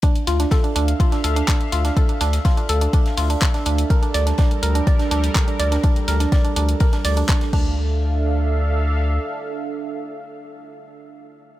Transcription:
<<
  \new Staff \with { instrumentName = "Analog synth pad" } { \time 4/4 \key d \minor \tempo 4 = 124 << { <d' e'' f''>1~ | <d' e'' f''>1 | <g bes'>1~ | <g bes'>2.~ <g bes'>8 <d' a' e'' f''>8~ |
<d' a' e'' f''>1~ | <d' a' e'' f''>1 | } \\ { a'1~ | a'1~ | a'1~ | a'2.~ a'8 r8 |
r1 | r1 | } >> }
  \new Staff \with { instrumentName = "Synth pluck" } { \time 4/4 \key d \minor d'16 r16 f'16 d'16 a'16 d'16 d'16 r16 f'16 d'16 a'16 d'16 d'16 r16 f'16 d'16 | a'16 d'16 d'16 r16 f'16 d'16 a'16 d'16 d'16 r16 f'16 d'16 a'16 d'16 d'16 r16 | bes'16 d'16 d''16 d'16 d'16 r16 bes'16 d'16 d''16 d'16 d'16 r16 bes'16 d'16 d''16 d'16 | d'16 r16 bes'16 d'16 d''16 d'16 d'16 r16 bes'16 d'16 d''16 d'16 d'16 r16 d'8~ |
d'8 r2. r8 | r1 | }
  \new Staff \with { instrumentName = "Analog synth bass" } { \clef bass \time 4/4 \key d \minor r8 d,8 r8 d,8 r8 d,8 r8 d,8 | r8 d,8 r8 d,8 r8 d,8 r8 d,8 | r8 d,8 r8 d,8 r8 d,8 r8 d,8 | r8 d,8 r8 d,8 r8 d,8 r8 d,8~ |
d,2. r4 | r1 | }
  \new DrumStaff \with { instrumentName = "Drums" } \drummode { \time 4/4 <hh bd cymr>16 hh16 <hho cymr sn>16 <hh sn>16 <hh bd cymr sn>16 hh16 <hho cymr>16 hh16 <hh bd cymr>16 <hh sn>16 <hho cymr>16 <hh cymr>16 <hc hh bd sn>16 <hh cymr>16 <hho cymr>16 <hh sn>16 | <hh bd cymr>16 hh16 <hho cymr sn>16 <hh sn>16 <hh bd cymr sn>16 hh16 <hho cymr>16 hh16 <hh bd cymr>16 <hh sn>16 <hho sn>16 hh16 <hc hh bd cymr sn>16 <hh sn>16 <hho cymr>16 hh16 | <hh bd cymr>16 hh16 <hho cymr sn>16 <hh sn>16 <hh bd cymr sn>16 hh16 <hho cymr>16 hh16 <hh bd cymr>16 <hh sn>16 <hho cymr>16 <hh cymr>16 <hc hh bd cymr sn>16 <hh cymr>16 <hho cymr>16 <hh sn>16 | <hh bd cymr>16 hh16 <hho cymr sn>16 <hh sn>16 <hh bd cymr sn>16 hh16 <hho cymr>16 hh16 <hh bd cymr>16 <hh sn>16 <hho sn>16 hh16 <hc hh bd cymr sn>16 <hh sn>16 <cymc bd>8 |
r4 r4 r4 r4 | r4 r4 r4 r4 | }
>>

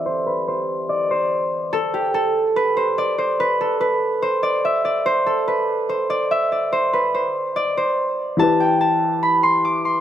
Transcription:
<<
  \new Staff \with { instrumentName = "Harp" } { \time 4/4 \key e \minor \tempo 4 = 144 c''8 b'8 c''4 d''8 c''4. | a'8 g'8 a'4 b'8 c''8 d''8 c''8 | b'8 a'8 b'4 c''8 d''8 e''8 d''8 | c''8 a'8 b'4 c''8 d''8 e''8 d''8 |
c''8 b'8 c''4 d''8 c''4. | a''8 g''8 a''4 b''8 c'''8 d'''8 c'''8 | }
  \new Staff \with { instrumentName = "Grand piano" } { \time 4/4 \key e \minor <e c' g' a'>1 | r1 | r1 | r1 |
r1 | <e e' g' b'>1 | }
>>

